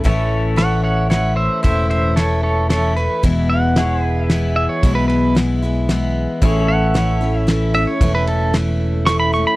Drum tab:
RD |x-x-x-|xxx-x-|x-x-x-|xxx-x-|
SD |--o-o-|--o-o-|--o-o-|--o-o-|
BD |o-----|o-----|o-----|o-----|

RD |x-x-x-|xxx-x-|
SD |--o-o-|--o-o-|
BD |o-----|o-----|